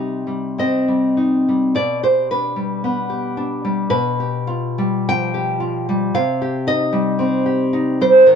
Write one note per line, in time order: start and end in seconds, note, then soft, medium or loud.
0.00 1.72 C3 medium
0.00 0.26 G3 medium
0.00 1.16 D#4 medium
0.00 0.56 G4 medium
0.27 0.87 G3 medium
0.58 1.75 C4 medium
0.58 1.72 D#5 medium
0.88 1.47 G3 medium
1.17 1.75 D#4 medium
1.49 1.76 G3 medium
1.75 3.89 B2 medium
1.75 2.03 D5 loud
2.03 3.08 G4 medium
2.03 2.30 C5 medium
2.31 3.36 D4 medium
2.31 3.35 B4 medium
2.56 3.63 G3 medium
2.84 3.93 B3 medium
3.10 3.93 G4 medium
3.37 3.93 D4 medium
3.65 3.93 G3 medium
3.90 6.12 B2 medium
3.90 5.04 B4 loud
4.20 5.33 G4 medium
4.47 5.59 F4 medium
4.78 5.88 G3 medium
5.09 6.17 F3 medium
5.09 6.13 G5 loud
5.34 6.16 G4 medium
5.60 6.15 F4 medium
5.89 6.17 G3 medium
6.14 8.23 C3 medium
6.14 6.66 F5 loud
6.42 7.45 G4 medium
6.67 7.72 D#4 medium
6.67 7.97 D#5 loud
6.93 8.00 G3 medium
7.19 8.27 C4 medium
7.46 8.28 G4 medium
7.73 8.28 D#4 medium
8.01 8.26 G3 medium
8.01 8.26 C5 loud
8.26 8.35 D#3 medium
8.26 8.35 A#4 loud